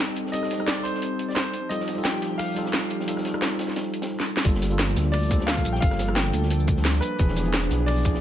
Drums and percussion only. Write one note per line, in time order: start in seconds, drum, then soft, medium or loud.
0.08 snare soft
0.16 closed hi-hat medium
0.26 snare soft
0.33 closed hi-hat medium
0.43 cross-stick soft
0.43 snare soft
0.50 snare soft
0.50 closed hi-hat medium
0.60 cross-stick soft
0.67 snare loud
0.67 closed hi-hat medium
0.77 cross-stick soft
0.85 closed hi-hat medium
0.94 snare soft
1.02 closed hi-hat medium
1.19 closed hi-hat medium
1.29 snare soft
1.36 snare loud
1.36 closed hi-hat loud
1.36 closed hi-hat medium
1.54 closed hi-hat medium
1.71 closed hi-hat loud
1.71 closed hi-hat medium
1.80 snare medium
1.88 snare soft
1.88 closed hi-hat medium
1.98 closed hi-hat soft
2.05 snare loud
2.05 closed hi-hat medium
2.22 snare medium
2.22 closed hi-hat medium
2.39 cross-stick soft
2.39 closed hi-hat loud
2.39 open hi-hat medium
2.56 snare soft
2.56 closed hi-hat medium
2.66 snare medium
2.73 snare loud
2.73 closed hi-hat medium
2.82 snare soft
2.90 closed hi-hat medium
3.00 snare soft
3.08 closed hi-hat medium
3.08 closed hi-hat loud
3.17 cross-stick soft
3.17 snare medium
3.25 snare medium
3.25 closed hi-hat medium
3.34 cross-stick medium
3.42 snare loud
3.42 closed hi-hat medium
3.42 closed hi-hat loud
3.51 cross-stick soft
3.59 snare medium
3.59 closed hi-hat medium
3.68 snare soft
3.76 snare loud
3.76 closed hi-hat medium
3.94 closed hi-hat medium
4.02 snare loud
4.02 closed hi-hat medium
4.20 snare medium
4.37 snare loud
4.45 kick loud
4.45 closed hi-hat loud
4.45 closed hi-hat medium
4.54 snare medium
4.62 snare soft
4.62 closed hi-hat medium
4.62 shaker medium
4.70 closed hi-hat soft
4.79 snare loud
4.79 closed hi-hat medium
4.79 closed hi-hat loud
4.89 shaker soft
4.96 snare medium
4.96 closed hi-hat medium
4.96 shaker medium
5.13 cross-stick soft
5.13 closed hi-hat loud
5.13 open hi-hat medium
5.23 shaker soft
5.31 kick loud
5.31 snare soft
5.31 closed hi-hat medium
5.31 shaker medium
5.40 snare medium
5.48 snare loud
5.48 closed hi-hat loud
5.48 closed hi-hat medium
5.57 kick medium
5.57 snare soft
5.57 shaker soft
5.65 closed hi-hat medium
5.65 shaker medium
5.75 snare medium
5.82 kick loud
5.82 closed hi-hat medium
5.90 cross-stick soft
5.90 snare soft
5.99 snare medium
5.99 closed hi-hat medium
5.99 shaker medium
6.09 cross-stick medium
6.16 snare loud
6.16 closed hi-hat medium
6.26 cross-stick soft
6.26 shaker soft
6.33 closed hi-hat medium
6.33 shaker medium
6.43 snare soft
6.50 closed hi-hat medium
6.60 shaker soft
6.67 kick loud
6.67 closed hi-hat medium
6.67 shaker medium
6.77 snare soft
6.84 snare loud
6.84 closed hi-hat medium
6.94 shaker soft
7.02 closed hi-hat medium
7.02 shaker medium
7.19 kick loud
7.19 closed hi-hat medium
7.28 snare medium
7.37 snare medium
7.37 closed hi-hat medium
7.37 shaker medium
7.45 closed hi-hat soft
7.53 snare loud
7.53 closed hi-hat medium
7.63 shaker soft
7.71 snare medium
7.71 closed hi-hat medium
7.71 shaker medium
7.88 cross-stick soft
7.88 closed hi-hat medium
7.88 open hi-hat medium
7.97 shaker soft
8.05 kick loud
8.05 snare soft
8.05 closed hi-hat medium
8.05 shaker medium
8.14 snare medium